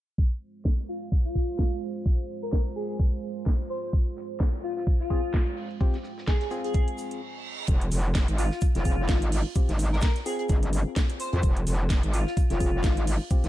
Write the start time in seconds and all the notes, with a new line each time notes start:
0.18 G#3 F4 C5, kick, closed hi-hat
0.31 closed hi-hat
0.65 kick, snare
0.89 F4
1.02 F4
1.12 kick, closed hi-hat
1.25 F4, closed hi-hat
1.35 kick
1.59 kick, snare
1.72 closed hi-hat
1.95 closed hi-hat
2.06 kick, closed hi-hat
2.19 closed hi-hat
2.42 A#4
2.53 A#4, kick, snare
2.66 closed hi-hat
2.76 G#4
2.89 G#4
2.99 kick, closed hi-hat
3.13 closed hi-hat
3.36 closed hi-hat
3.46 kick, snare
3.60 closed hi-hat
3.70 C5
3.83 C5, closed hi-hat
3.93 kick, closed hi-hat, shaker
4.06 closed hi-hat
4.17 snare, shaker
4.40 kick, snare, closed hi-hat
4.53 closed hi-hat
4.63 F4, shaker
4.77 F4, snare
4.87 kick, closed hi-hat, shaker
5.00 F4, snare, closed hi-hat
5.10 C4 F4 G#4, kick, shaker
5.24 closed hi-hat
5.33 kick, snare, closed hi-hat, shaker
5.47 closed hi-hat
5.57 open hi-hat
5.71 closed hi-hat
5.81 C4 F4 G4, kick, closed hi-hat, shaker
5.94 snare, closed hi-hat
6.03 snare, shaker
6.18 snare
6.27 G#4, kick, snare, closed hi-hat, shaker
6.40 G#4, snare, closed hi-hat
6.51 C4 F4 G#4, shaker
6.64 G#4, closed hi-hat
6.74 kick, closed hi-hat, reverse cymbal, shaker
6.88 closed hi-hat
6.98 shaker
7.11 closed hi-hat
7.68 F1, kick, closed hi-hat, shaker
7.81 closed hi-hat
7.92 F1, snare, open hi-hat, shaker
8.15 kick, snare, closed hi-hat, shaker
8.28 G#1, closed hi-hat
8.38 F4, open hi-hat, shaker
8.51 F4, snare
8.61 kick, closed hi-hat, shaker
8.75 F1 F4, snare, closed hi-hat
8.85 C4 F4 G#4, kick, open hi-hat, shaker
9.08 G#1, kick, snare, closed hi-hat, shaker
9.22 closed hi-hat
9.32 open hi-hat
9.55 C4 F4 G4, kick, closed hi-hat, shaker
9.68 G#1, snare, closed hi-hat
9.79 snare, open hi-hat, shaker
9.92 A#4, snare
10.01 A#4, kick, snare, closed hi-hat, shaker
10.16 snare, closed hi-hat
10.26 C4 F4 G#4, open hi-hat, shaker
10.39 G#4, closed hi-hat
10.49 G1, kick, closed hi-hat, shaker
10.63 closed hi-hat
10.73 open hi-hat, shaker
10.96 kick, snare, closed hi-hat, shaker
11.10 closed hi-hat
11.20 C5, open hi-hat, shaker
11.33 F2 C5, closed hi-hat
11.43 F1, kick, closed hi-hat, shaker
11.57 closed hi-hat
11.67 F1, snare, open hi-hat, shaker
11.90 kick, snare, closed hi-hat, shaker
12.03 G#1, closed hi-hat
12.14 F4, open hi-hat, shaker
12.27 F4, snare
12.37 kick, closed hi-hat, shaker
12.50 F1 F4, snare, closed hi-hat
12.60 C4 F4 G#4, kick, open hi-hat, shaker
12.83 G#1, kick, snare, closed hi-hat, shaker
12.97 closed hi-hat
13.07 open hi-hat
13.31 C4 F4 G4, kick, closed hi-hat, shaker
13.44 G#1, snare, closed hi-hat